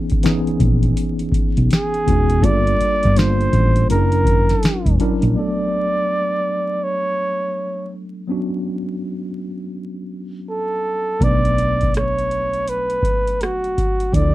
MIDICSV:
0, 0, Header, 1, 6, 480
1, 0, Start_track
1, 0, Tempo, 731707
1, 1593, Time_signature, 4, 2, 24, 8
1, 9412, End_track
2, 0, Start_track
2, 0, Title_t, "Flugelhorn"
2, 0, Program_c, 0, 56
2, 1129, Note_on_c, 0, 68, 88
2, 1604, Note_on_c, 0, 74, 106
2, 1614, Note_off_c, 0, 68, 0
2, 2086, Note_on_c, 0, 72, 94
2, 2096, Note_off_c, 0, 74, 0
2, 2560, Note_off_c, 0, 72, 0
2, 2562, Note_on_c, 0, 70, 91
2, 3252, Note_off_c, 0, 70, 0
2, 3524, Note_on_c, 0, 74, 92
2, 4484, Note_on_c, 0, 73, 90
2, 4494, Note_off_c, 0, 74, 0
2, 5199, Note_off_c, 0, 73, 0
2, 6888, Note_on_c, 0, 69, 80
2, 7369, Note_on_c, 0, 74, 96
2, 7379, Note_off_c, 0, 69, 0
2, 7841, Note_off_c, 0, 74, 0
2, 7845, Note_on_c, 0, 73, 82
2, 8325, Note_on_c, 0, 71, 90
2, 8335, Note_off_c, 0, 73, 0
2, 8804, Note_on_c, 0, 66, 80
2, 8813, Note_off_c, 0, 71, 0
2, 9278, Note_on_c, 0, 74, 95
2, 9288, Note_off_c, 0, 66, 0
2, 9412, Note_off_c, 0, 74, 0
2, 9412, End_track
3, 0, Start_track
3, 0, Title_t, "Tine electric piano"
3, 0, Program_c, 1, 4
3, 0, Control_c, 1, 64, 127
3, 0, Note_on_c, 1, 52, 80
3, 0, Note_on_c, 1, 59, 65
3, 0, Note_on_c, 1, 61, 70
3, 0, Note_on_c, 1, 63, 64
3, 0, Note_on_c, 1, 68, 76
3, 84, Note_off_c, 1, 52, 0
3, 87, Note_off_c, 1, 59, 0
3, 88, Note_off_c, 1, 61, 0
3, 90, Note_off_c, 1, 63, 0
3, 91, Note_off_c, 1, 68, 0
3, 152, Note_on_c, 1, 52, 77
3, 155, Note_on_c, 1, 59, 75
3, 159, Note_on_c, 1, 61, 67
3, 163, Note_on_c, 1, 63, 70
3, 166, Note_on_c, 1, 68, 89
3, 1022, Note_off_c, 1, 52, 0
3, 1023, Note_off_c, 1, 59, 0
3, 1025, Note_off_c, 1, 61, 0
3, 1027, Note_off_c, 1, 63, 0
3, 1028, Note_off_c, 1, 68, 0
3, 1353, Note_on_c, 1, 52, 61
3, 1355, Note_on_c, 1, 59, 59
3, 1358, Note_on_c, 1, 61, 53
3, 1363, Note_on_c, 1, 63, 59
3, 1365, Note_on_c, 1, 66, 68
3, 1570, Note_off_c, 1, 52, 0
3, 1572, Note_off_c, 1, 59, 0
3, 1573, Note_off_c, 1, 61, 0
3, 1575, Note_off_c, 1, 63, 0
3, 1576, Note_off_c, 1, 66, 0
3, 1594, Note_on_c, 1, 55, 71
3, 1596, Note_on_c, 1, 58, 61
3, 1600, Control_c, 1, 64, 0
3, 1600, Note_on_c, 1, 62, 66
3, 1602, Note_on_c, 1, 65, 66
3, 1607, Note_on_c, 1, 68, 65
3, 1649, Note_on_c, 1, 69, 75
3, 1654, Note_off_c, 1, 68, 0
3, 1696, Control_c, 1, 64, 127
3, 2028, Note_off_c, 1, 55, 0
3, 2029, Note_off_c, 1, 58, 0
3, 2031, Note_off_c, 1, 62, 0
3, 2032, Note_off_c, 1, 65, 0
3, 2056, Note_off_c, 1, 69, 0
3, 2072, Note_on_c, 1, 55, 65
3, 2076, Note_on_c, 1, 58, 61
3, 2080, Note_on_c, 1, 62, 61
3, 2082, Note_on_c, 1, 65, 63
3, 2086, Note_on_c, 1, 72, 70
3, 2553, Note_off_c, 1, 55, 0
3, 2554, Note_off_c, 1, 58, 0
3, 2554, Note_off_c, 1, 62, 0
3, 2556, Note_on_c, 1, 54, 65
3, 2558, Note_off_c, 1, 65, 0
3, 2559, Note_off_c, 1, 72, 0
3, 2560, Note_on_c, 1, 61, 61
3, 2562, Note_on_c, 1, 62, 60
3, 2563, Control_c, 1, 64, 0
3, 2565, Note_on_c, 1, 64, 65
3, 2569, Note_on_c, 1, 68, 62
3, 2612, Note_on_c, 1, 70, 74
3, 2614, Note_off_c, 1, 68, 0
3, 2681, Control_c, 1, 64, 127
3, 3206, Note_off_c, 1, 54, 0
3, 3208, Note_off_c, 1, 61, 0
3, 3210, Note_off_c, 1, 62, 0
3, 3211, Note_off_c, 1, 64, 0
3, 3235, Note_off_c, 1, 70, 0
3, 3275, Note_on_c, 1, 54, 66
3, 3279, Note_on_c, 1, 61, 65
3, 3282, Note_on_c, 1, 62, 72
3, 3286, Note_on_c, 1, 64, 62
3, 3289, Note_on_c, 1, 70, 78
3, 3492, Note_off_c, 1, 54, 0
3, 3494, Note_off_c, 1, 61, 0
3, 3495, Note_off_c, 1, 62, 0
3, 3497, Note_off_c, 1, 64, 0
3, 3499, Note_off_c, 1, 70, 0
3, 3509, Note_on_c, 1, 54, 49
3, 3516, Note_on_c, 1, 59, 50
3, 3521, Control_c, 1, 64, 0
3, 3523, Note_on_c, 1, 57, 47
3, 3529, Note_on_c, 1, 62, 50
3, 3536, Note_on_c, 1, 69, 55
3, 3650, Control_c, 1, 64, 127
3, 5405, Note_off_c, 1, 54, 0
3, 5408, Note_off_c, 1, 59, 0
3, 5412, Note_off_c, 1, 57, 0
3, 5415, Note_off_c, 1, 62, 0
3, 5418, Note_off_c, 1, 69, 0
3, 5427, Note_on_c, 1, 54, 58
3, 5434, Note_on_c, 1, 59, 55
3, 5440, Note_on_c, 1, 61, 59
3, 5447, Note_on_c, 1, 62, 58
3, 5455, Note_on_c, 1, 66, 65
3, 7324, Note_off_c, 1, 54, 0
3, 7327, Note_off_c, 1, 59, 0
3, 7330, Note_off_c, 1, 61, 0
3, 7334, Note_off_c, 1, 62, 0
3, 7338, Note_off_c, 1, 66, 0
3, 7345, Note_on_c, 1, 54, 53
3, 7351, Note_on_c, 1, 59, 51
3, 7357, Note_on_c, 1, 57, 48
3, 7365, Note_on_c, 1, 62, 47
3, 7372, Note_on_c, 1, 71, 60
3, 9243, Note_off_c, 1, 54, 0
3, 9246, Note_off_c, 1, 59, 0
3, 9249, Note_off_c, 1, 57, 0
3, 9253, Note_off_c, 1, 62, 0
3, 9256, Note_off_c, 1, 71, 0
3, 9264, Note_on_c, 1, 53, 57
3, 9271, Note_on_c, 1, 60, 46
3, 9279, Note_on_c, 1, 62, 53
3, 9283, Control_c, 1, 64, 0
3, 9285, Note_on_c, 1, 64, 50
3, 9293, Note_on_c, 1, 69, 61
3, 9409, Control_c, 1, 64, 127
3, 9412, Note_off_c, 1, 53, 0
3, 9412, Note_off_c, 1, 60, 0
3, 9412, Note_off_c, 1, 62, 0
3, 9412, Note_off_c, 1, 64, 0
3, 9412, Note_off_c, 1, 69, 0
3, 9412, End_track
4, 0, Start_track
4, 0, Title_t, "Fingered electric bass"
4, 0, Program_c, 2, 33
4, 397, Note_on_c, 2, 34, 85
4, 599, Note_off_c, 2, 34, 0
4, 1032, Note_on_c, 2, 35, 77
4, 1105, Note_off_c, 2, 35, 0
4, 1364, Note_on_c, 2, 28, 87
4, 1594, Note_off_c, 2, 28, 0
4, 1594, Note_on_c, 2, 31, 94
4, 1798, Note_off_c, 2, 31, 0
4, 2003, Note_on_c, 2, 31, 83
4, 2275, Note_off_c, 2, 31, 0
4, 2318, Note_on_c, 2, 33, 87
4, 2520, Note_off_c, 2, 33, 0
4, 2563, Note_on_c, 2, 30, 85
4, 2966, Note_off_c, 2, 30, 0
4, 3187, Note_on_c, 2, 28, 80
4, 3262, Note_off_c, 2, 28, 0
4, 3429, Note_on_c, 2, 34, 90
4, 3503, Note_off_c, 2, 34, 0
4, 7355, Note_on_c, 2, 35, 64
4, 9248, Note_off_c, 2, 35, 0
4, 9273, Note_on_c, 2, 38, 66
4, 9412, Note_off_c, 2, 38, 0
4, 9412, End_track
5, 0, Start_track
5, 0, Title_t, "Muted fingered electric bass strokes"
5, 869, Note_on_c, 9, 29, 44
5, 935, Note_off_c, 9, 29, 0
5, 1842, Note_on_c, 9, 29, 47
5, 1907, Note_off_c, 9, 29, 0
5, 3043, Note_on_c, 9, 29, 46
5, 3109, Note_off_c, 9, 29, 0
5, 9412, End_track
6, 0, Start_track
6, 0, Title_t, "Drums"
6, 63, Note_on_c, 9, 42, 43
6, 77, Note_on_c, 9, 36, 81
6, 129, Note_off_c, 9, 42, 0
6, 143, Note_off_c, 9, 36, 0
6, 151, Note_on_c, 9, 42, 65
6, 169, Note_on_c, 9, 38, 103
6, 217, Note_off_c, 9, 42, 0
6, 234, Note_off_c, 9, 38, 0
6, 310, Note_on_c, 9, 42, 46
6, 376, Note_off_c, 9, 42, 0
6, 393, Note_on_c, 9, 36, 92
6, 394, Note_on_c, 9, 42, 56
6, 458, Note_off_c, 9, 36, 0
6, 460, Note_off_c, 9, 42, 0
6, 543, Note_on_c, 9, 42, 38
6, 609, Note_off_c, 9, 42, 0
6, 636, Note_on_c, 9, 42, 83
6, 702, Note_off_c, 9, 42, 0
6, 782, Note_on_c, 9, 42, 45
6, 848, Note_off_c, 9, 42, 0
6, 864, Note_on_c, 9, 36, 81
6, 880, Note_on_c, 9, 42, 53
6, 930, Note_off_c, 9, 36, 0
6, 946, Note_off_c, 9, 42, 0
6, 1030, Note_on_c, 9, 42, 44
6, 1096, Note_off_c, 9, 42, 0
6, 1119, Note_on_c, 9, 42, 74
6, 1134, Note_on_c, 9, 38, 105
6, 1184, Note_off_c, 9, 42, 0
6, 1200, Note_off_c, 9, 38, 0
6, 1273, Note_on_c, 9, 42, 45
6, 1338, Note_off_c, 9, 42, 0
6, 1359, Note_on_c, 9, 36, 81
6, 1362, Note_on_c, 9, 42, 63
6, 1425, Note_off_c, 9, 36, 0
6, 1428, Note_off_c, 9, 42, 0
6, 1506, Note_on_c, 9, 42, 48
6, 1572, Note_off_c, 9, 42, 0
6, 1590, Note_on_c, 9, 36, 101
6, 1598, Note_on_c, 9, 42, 83
6, 1656, Note_off_c, 9, 36, 0
6, 1664, Note_off_c, 9, 42, 0
6, 1752, Note_on_c, 9, 42, 44
6, 1818, Note_off_c, 9, 42, 0
6, 1841, Note_on_c, 9, 42, 58
6, 1906, Note_off_c, 9, 42, 0
6, 1987, Note_on_c, 9, 42, 44
6, 1999, Note_on_c, 9, 36, 84
6, 2052, Note_off_c, 9, 42, 0
6, 2064, Note_off_c, 9, 36, 0
6, 2075, Note_on_c, 9, 42, 75
6, 2092, Note_on_c, 9, 38, 102
6, 2141, Note_off_c, 9, 42, 0
6, 2158, Note_off_c, 9, 38, 0
6, 2234, Note_on_c, 9, 42, 44
6, 2300, Note_off_c, 9, 42, 0
6, 2313, Note_on_c, 9, 36, 87
6, 2315, Note_on_c, 9, 42, 57
6, 2379, Note_off_c, 9, 36, 0
6, 2381, Note_off_c, 9, 42, 0
6, 2465, Note_on_c, 9, 42, 45
6, 2530, Note_off_c, 9, 42, 0
6, 2557, Note_on_c, 9, 42, 88
6, 2623, Note_off_c, 9, 42, 0
6, 2702, Note_on_c, 9, 42, 47
6, 2768, Note_off_c, 9, 42, 0
6, 2784, Note_on_c, 9, 36, 88
6, 2800, Note_on_c, 9, 42, 58
6, 2850, Note_off_c, 9, 36, 0
6, 2866, Note_off_c, 9, 42, 0
6, 2947, Note_on_c, 9, 42, 42
6, 2952, Note_on_c, 9, 38, 34
6, 3013, Note_off_c, 9, 42, 0
6, 3018, Note_off_c, 9, 38, 0
6, 3036, Note_on_c, 9, 42, 79
6, 3051, Note_on_c, 9, 38, 112
6, 3101, Note_off_c, 9, 42, 0
6, 3116, Note_off_c, 9, 38, 0
6, 3183, Note_on_c, 9, 36, 84
6, 3190, Note_on_c, 9, 42, 47
6, 3249, Note_off_c, 9, 36, 0
6, 3256, Note_off_c, 9, 42, 0
6, 3278, Note_on_c, 9, 42, 58
6, 3344, Note_off_c, 9, 42, 0
6, 3425, Note_on_c, 9, 42, 48
6, 3490, Note_off_c, 9, 42, 0
6, 7351, Note_on_c, 9, 36, 88
6, 7358, Note_on_c, 9, 42, 62
6, 7416, Note_off_c, 9, 36, 0
6, 7424, Note_off_c, 9, 42, 0
6, 7511, Note_on_c, 9, 42, 40
6, 7577, Note_off_c, 9, 42, 0
6, 7599, Note_on_c, 9, 42, 51
6, 7665, Note_off_c, 9, 42, 0
6, 7746, Note_on_c, 9, 42, 42
6, 7758, Note_on_c, 9, 36, 65
6, 7812, Note_off_c, 9, 42, 0
6, 7824, Note_off_c, 9, 36, 0
6, 7835, Note_on_c, 9, 42, 56
6, 7852, Note_on_c, 9, 37, 91
6, 7900, Note_off_c, 9, 42, 0
6, 7917, Note_off_c, 9, 37, 0
6, 7993, Note_on_c, 9, 42, 37
6, 8059, Note_off_c, 9, 42, 0
6, 8077, Note_on_c, 9, 42, 48
6, 8142, Note_off_c, 9, 42, 0
6, 8223, Note_on_c, 9, 42, 35
6, 8288, Note_off_c, 9, 42, 0
6, 8315, Note_on_c, 9, 42, 66
6, 8380, Note_off_c, 9, 42, 0
6, 8461, Note_on_c, 9, 42, 39
6, 8526, Note_off_c, 9, 42, 0
6, 8543, Note_on_c, 9, 36, 71
6, 8560, Note_on_c, 9, 42, 49
6, 8609, Note_off_c, 9, 36, 0
6, 8625, Note_off_c, 9, 42, 0
6, 8708, Note_on_c, 9, 42, 37
6, 8774, Note_off_c, 9, 42, 0
6, 8796, Note_on_c, 9, 42, 62
6, 8811, Note_on_c, 9, 37, 89
6, 8861, Note_off_c, 9, 42, 0
6, 8876, Note_off_c, 9, 37, 0
6, 8948, Note_on_c, 9, 42, 38
6, 9014, Note_off_c, 9, 42, 0
6, 9037, Note_on_c, 9, 36, 73
6, 9039, Note_on_c, 9, 42, 48
6, 9102, Note_off_c, 9, 36, 0
6, 9105, Note_off_c, 9, 42, 0
6, 9184, Note_on_c, 9, 42, 40
6, 9250, Note_off_c, 9, 42, 0
6, 9269, Note_on_c, 9, 36, 89
6, 9277, Note_on_c, 9, 42, 69
6, 9334, Note_off_c, 9, 36, 0
6, 9343, Note_off_c, 9, 42, 0
6, 9412, End_track
0, 0, End_of_file